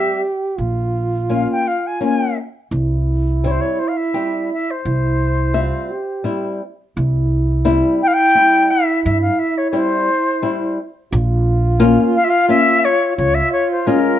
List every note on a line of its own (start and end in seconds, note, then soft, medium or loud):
0.00 0.22 G3 medium
0.00 0.22 C4 medium
0.00 0.23 G4 medium
0.00 0.59 G4 loud
0.00 0.22 E5 loud
0.58 1.44 A#1 medium
0.58 2.45 F4 loud
1.29 1.66 A#3 medium
1.29 1.66 C#4 medium
1.29 1.66 F4 medium
1.29 1.48 F5 medium
1.52 1.69 G5 medium
1.68 1.88 F5 medium
1.87 2.03 G#5 medium
2.00 2.37 A#3 medium
2.00 2.37 C#4 medium
2.00 2.37 F4 medium
2.00 2.36 G#5 medium
2.71 3.57 C2 loud
2.71 4.81 E4 medium
3.44 3.79 G3 medium
3.44 3.79 C4 medium
3.44 3.80 E4 medium
3.44 3.49 C5 medium
3.44 3.53 C#5 medium
3.51 3.62 C5 medium
3.61 3.81 C#5 medium
3.79 3.90 C5 medium
3.88 3.98 F5 medium
3.97 4.50 E5 medium
4.14 4.50 G3 medium
4.14 4.50 C4 medium
4.14 4.50 G4 medium
4.53 4.72 E5 medium
4.71 6.63 C5 medium
4.85 5.70 C2 medium
4.85 5.58 E4 medium
5.54 5.90 G3 medium
5.54 5.90 C4 medium
5.54 5.93 F4 medium
5.54 5.90 E5 medium
5.91 6.61 G4 medium
6.24 6.60 G3 medium
6.24 6.60 C4 medium
6.24 6.61 E4 medium
6.97 7.80 C2 loud
6.97 10.83 E4 medium
7.65 8.01 G3 medium
7.65 8.01 C4 medium
7.65 8.01 E4 loud
8.02 8.09 G5 loud
8.08 8.15 F5 loud
8.14 8.73 G5 loud
8.35 8.70 G3 medium
8.35 8.70 C4 medium
8.35 8.70 E4 medium
8.71 9.04 E5 loud
9.05 9.26 G2 loud
9.05 9.21 E5 medium
9.21 9.41 F5 medium
9.39 9.59 E5 medium
9.58 9.68 C#5 medium
9.70 10.08 G3 medium
9.70 10.08 C4 medium
9.70 10.09 E4 medium
9.70 9.77 C#5 soft
9.75 10.79 C5 loud
10.42 10.78 G3 medium
10.42 10.78 C4 medium
10.42 10.78 E4 medium
11.12 11.95 A#1 loud
11.12 13.14 F4 loud
11.80 12.15 A#3 medium
11.80 12.15 C#4 medium
11.80 12.15 F4 loud
12.15 12.26 F5 loud
12.24 12.31 E5 loud
12.30 12.49 F5 loud
12.48 12.84 A#3 medium
12.48 12.84 C#4 medium
12.48 12.84 F4 medium
12.48 12.86 E5 loud
12.85 13.17 C#5 loud
13.16 13.39 C#2 loud
13.16 14.19 F4 loud
13.16 13.36 C#5 medium
13.35 13.52 E5 loud
13.52 13.68 C#5 medium
13.72 13.88 C5 medium
13.87 14.19 G#3 medium
13.87 14.19 C#4 medium
13.87 14.19 F4 medium
13.87 14.19 A#4 medium